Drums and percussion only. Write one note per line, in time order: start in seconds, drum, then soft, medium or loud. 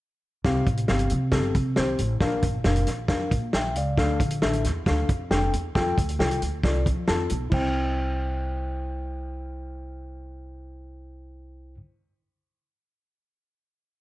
0.45 kick medium
0.45 snare medium
0.67 kick medium
0.67 closed hi-hat medium
0.77 closed hi-hat medium
0.88 snare loud
0.99 closed hi-hat soft
1.10 closed hi-hat medium
1.32 kick medium
1.32 snare loud
1.55 kick medium
1.55 closed hi-hat medium
1.76 snare medium
1.98 closed hi-hat medium
2.20 kick medium
2.20 snare medium
2.42 kick medium
2.42 closed hi-hat medium
2.64 snare loud
2.76 closed hi-hat soft
2.87 snare soft
2.87 closed hi-hat medium
3.08 kick medium
3.08 snare loud
3.31 kick medium
3.31 closed hi-hat medium
3.53 snare loud
3.76 closed hi-hat medium
3.98 kick loud
3.98 snare loud
4.20 kick medium
4.20 closed hi-hat medium
4.30 closed hi-hat medium
4.42 snare loud
4.53 closed hi-hat soft
4.64 snare soft
4.64 closed hi-hat medium
4.86 kick medium
4.86 snare loud
5.09 kick medium
5.09 closed hi-hat medium
5.31 snare loud
5.53 closed hi-hat medium
5.75 kick loud
5.75 snare loud
5.98 kick medium
5.98 closed hi-hat medium
6.09 closed hi-hat medium
6.20 snare loud
6.31 closed hi-hat soft
6.42 closed hi-hat medium
6.64 kick medium
6.64 snare loud
6.86 kick medium
6.86 closed hi-hat medium
7.08 snare loud
7.30 closed hi-hat medium
7.52 kick medium
7.52 crash medium